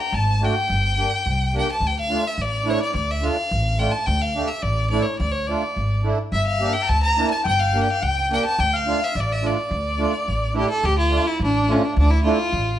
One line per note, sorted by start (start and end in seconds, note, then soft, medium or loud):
0.00 0.16 G5 medium
0.00 0.11 A#5 medium
0.12 0.46 G#1 loud
0.12 0.46 A5 medium
0.12 0.45 A5 medium
0.41 0.55 A3 medium
0.41 0.55 D4 medium
0.41 0.55 F#4 medium
0.41 1.55 G5 medium
0.41 1.55 G5 loud
0.70 1.03 G1 medium
0.98 1.11 A#3 medium
0.98 1.12 D4 medium
0.98 1.12 G4 medium
1.26 1.59 C2 medium
1.54 1.67 A#3 medium
1.54 1.68 D4 medium
1.54 1.68 G4 medium
1.58 1.69 G5 medium
1.72 1.88 A5 medium
1.80 2.15 D2 medium
1.87 1.98 G5 medium
1.99 2.29 F5 loud
2.10 2.24 A3 medium
2.10 2.24 D4 medium
2.10 2.24 F4 medium
2.27 2.43 E5 medium
2.38 2.72 A1 medium
2.38 2.71 D5 medium
2.65 2.79 A3 medium
2.65 2.80 D4 medium
2.65 2.80 E4 medium
2.70 2.82 C#5 medium
2.82 2.94 D5 medium
2.94 3.28 D2 loud
2.94 3.12 D5 medium
3.11 3.25 E5 medium
3.22 3.36 A3 medium
3.22 3.37 D4 medium
3.22 3.37 F4 medium
3.22 3.81 F5 loud
3.51 3.85 A1 medium
3.78 3.93 A3 medium
3.78 3.93 D4 medium
3.78 3.93 F4 medium
3.78 3.93 G5 medium
3.92 4.07 A5 medium
4.06 4.41 D2 loud
4.06 4.23 G5 medium
4.21 4.49 F5 medium
4.35 4.49 A3 medium
4.35 4.50 D4 medium
4.35 4.50 G4 medium
4.48 4.64 E5 medium
4.62 4.97 A1 medium
4.62 4.89 D5 medium
4.90 5.06 A3 medium
4.90 5.06 D4 medium
4.90 5.06 E4 medium
4.90 5.04 D5 medium
5.02 5.18 C#5 medium
5.19 5.54 D2 loud
5.19 5.33 D5 medium
5.32 5.48 C#5 medium
5.47 5.63 A3 medium
5.47 5.63 D4 medium
5.47 5.63 F4 medium
5.47 6.04 D5 medium
5.76 6.10 G#1 medium
6.03 6.18 A3 medium
6.03 6.18 D4 medium
6.03 6.19 E4 medium
6.32 6.66 G1 medium
6.32 6.46 E5 medium
6.32 6.85 E5 medium
6.47 6.74 F5 medium
6.60 6.74 A#3 medium
6.60 6.75 D4 medium
6.60 6.75 G4 medium
6.73 6.90 G5 loud
6.83 6.89 A#5 medium
6.87 7.23 D2 medium
6.87 7.43 A5 loud
6.87 7.02 A5 loud
7.03 7.29 A#5 loud
7.17 7.31 A#3 medium
7.17 7.31 D4 medium
7.17 7.32 E4 medium
7.30 7.44 A5 medium
7.44 7.79 G1 loud
7.44 7.97 G5 loud
7.44 7.61 G5 loud
7.60 7.82 F5 medium
7.73 7.88 A#3 medium
7.73 7.88 D4 medium
7.73 7.88 G4 medium
7.83 7.92 G5 medium
7.90 8.04 F5 loud
8.01 8.36 C#2 medium
8.01 8.54 G5 medium
8.01 8.31 G5 medium
8.31 8.44 A#3 medium
8.31 8.45 D4 medium
8.31 8.45 G4 medium
8.31 8.44 G5 loud
8.45 8.62 A5 loud
8.58 8.92 D2 loud
8.58 8.71 G5 medium
8.58 8.77 G5 medium
8.74 9.18 F5 medium
8.74 9.06 F5 medium
8.86 9.00 A3 medium
8.86 9.00 D4 medium
8.86 9.01 F4 medium
9.04 9.22 E5 medium
9.15 9.49 A1 medium
9.15 9.44 D5 medium
9.20 9.34 D5 medium
9.32 9.48 E5 medium
9.43 9.57 A3 medium
9.43 9.57 D4 medium
9.43 9.57 F4 medium
9.43 10.53 D5 medium
9.43 10.56 D5 medium
9.71 10.05 D2 medium
9.98 10.13 A3 medium
9.98 10.13 D4 medium
9.98 10.13 F4 medium
10.28 10.62 A1 medium
10.54 10.69 A3 medium
10.54 10.69 D4 medium
10.54 10.69 E4 medium
10.54 10.69 G4 loud
10.69 10.87 A4 medium
10.83 11.17 D2 loud
10.83 10.98 G4 loud
10.98 11.29 F4 loud
11.10 11.25 A3 medium
11.10 11.26 D4 medium
11.10 11.26 F4 medium
11.27 11.41 E4 loud
11.40 11.73 A1 loud
11.44 11.73 D4 loud
11.68 11.82 A3 medium
11.68 11.86 C#4 medium
11.68 11.82 D4 medium
11.68 11.83 F4 medium
11.85 11.97 D4 medium
11.96 12.30 D2 loud
11.96 12.12 D4 medium
12.11 12.23 E4 loud
12.24 12.38 A3 medium
12.24 12.38 D4 medium
12.24 12.39 E4 medium
12.24 12.76 F4 medium
12.52 12.79 A1 medium